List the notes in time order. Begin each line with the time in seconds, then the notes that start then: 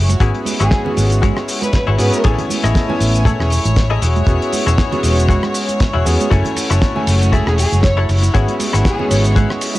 Already playing: F#1 A3 E4 F#4 C#5
0.09 muted clean electric guitar stroke, closed hi-hat, muted conga, high conga, cabasa
0.20 G#1 G#3 B3 C#4 E4 F#4 G#4 C#5, kick, closed hi-hat, cabasa
0.34 closed hi-hat, muted conga
0.45 open hi-hat, high conga, cabasa
0.60 G#1 E4 F#4 G#4 C#5, cross-stick, closed hi-hat, cabasa
0.71 kick, snare, closed hi-hat, muted conga, cabasa
0.85 B3 C#4 F#4 G#4, high conga, low conga
0.97 G#1, open hi-hat, muted conga, cabasa
1.10 closed hi-hat, cabasa
1.22 E4 F#4 G#4 C#5, kick, closed hi-hat, high conga, cabasa
1.36 cross-stick, muted conga
1.48 muted clean electric guitar stroke, open hi-hat, cabasa
1.62 B4, closed hi-hat, muted conga, high conga, cabasa
1.73 kick, snare, closed hi-hat, cabasa
1.87 G#1 E4 F#4 G#4 C#5
1.98 G#2 B3 C#4 F#4 G#4 B4, open hi-hat, muted conga, cabasa
2.12 muted clean electric guitar stroke, closed hi-hat, high conga, cabasa
2.23 A1 A3 B3 C#4 E4 G#4 A4 C#5 G#5, kick, closed hi-hat, muted conga, cabasa
2.38 closed hi-hat, low conga
2.49 open hi-hat, high conga, cabasa
2.63 A1 E4 G#4 A4 D#5, cross-stick, closed hi-hat, muted conga, cabasa
2.75 kick, snare, closed hi-hat, cabasa
2.88 B3 C#4 E4 G#5, muted conga, high conga, low conga
3.00 A1, open hi-hat, cabasa
3.14 closed hi-hat, cabasa
3.25 E4 G#4 A4 C#5, kick, closed hi-hat, muted conga, high conga, cabasa
3.39 E1 B3 C#4 E4 G#4, cross-stick
3.50 muted clean electric guitar stroke, open hi-hat, muted conga, cabasa
3.65 A1, closed hi-hat, high conga, cabasa
3.76 kick, snare, closed hi-hat, cabasa
3.90 E4 G#4 A4 D#5, muted conga
4.02 E1 G#3 E4 F#4 G#4 C#5, open hi-hat, cabasa
4.16 closed hi-hat, muted conga, high conga, cabasa
4.27 E1 B3 C#4 F#4 G#4, kick, closed hi-hat, cabasa
4.42 closed hi-hat
4.53 open hi-hat, muted conga, high conga, cabasa
4.66 E1 E4 F#4 G#4 C#5, cross-stick, closed hi-hat, cabasa
4.78 kick, snare, closed hi-hat, muted conga, cabasa
4.92 B3 C#4 F#4 G#4, closed hi-hat, high conga, low conga
5.03 E1, open hi-hat, cabasa
5.18 closed hi-hat, muted conga, cabasa
5.29 E4 F#4 G#4 C#5, kick, closed hi-hat, high conga, cabasa
5.43 cross-stick, muted conga
5.54 muted clean electric guitar stroke, open hi-hat, cabasa
5.69 closed hi-hat, high conga, cabasa
5.80 kick, snare, closed hi-hat, muted conga, cabasa
5.93 E1 E4 F#4 G#4 E5
6.05 E2 B3 C#4 F#4 G#4, open hi-hat, muted conga, cabasa
6.19 muted clean electric guitar stroke, closed hi-hat, high conga, cabasa
6.30 F#1 A3 C#4 E4 F#4 A4 C#5 G#5, kick, closed hi-hat, muted conga, cabasa
6.45 closed hi-hat, low conga
6.56 open hi-hat, ride, muted conga, high conga, cabasa
6.70 F#1 E4 F#4 A4 C#5, cross-stick, closed hi-hat, cabasa
6.82 kick, snare, closed hi-hat, cabasa
6.96 A3 C#4 E4 G#5, muted conga, high conga, low conga
7.07 F#1, open hi-hat, ride, cabasa
7.22 closed hi-hat, muted conga, cabasa
7.32 E4 F#4 G#4 A4 E5, kick, closed hi-hat, high conga, cabasa
7.46 E1 A3 C#4 E4 G#4, cross-stick
7.58 G#4, muted clean electric guitar stroke, open hi-hat, ride, muted conga, cabasa
7.72 F#1, closed hi-hat, high conga, cabasa
7.83 C#5, kick, snare, closed hi-hat, muted conga, cabasa
7.97 E4 F#4 A4 C#5
8.09 F#1, open hi-hat, ride, cabasa
8.22 muted clean electric guitar stroke, closed hi-hat, muted conga, high conga, cabasa
8.34 G#1 G#3 B3 C#4 E4 F#4 G#4 C#5, kick, closed hi-hat, cabasa
8.48 closed hi-hat, muted conga
8.60 open hi-hat, ride, high conga, cabasa
8.73 G#1 E4 F#4 G#4 C#5, cross-stick, closed hi-hat, cabasa
8.85 G#4, kick, snare, closed hi-hat, muted conga, cabasa
8.99 B3 C#4 F#4 G#4, high conga, low conga
9.10 G#1 C#5, open hi-hat, ride, muted conga, cabasa
9.24 C#5, closed hi-hat, cabasa
9.36 E4 F#4 G#4 C#5, kick, closed hi-hat, high conga, cabasa
9.50 cross-stick, muted conga
9.61 muted clean electric guitar stroke, open hi-hat, ride, cabasa
9.75 E5, closed hi-hat, muted conga, high conga, cabasa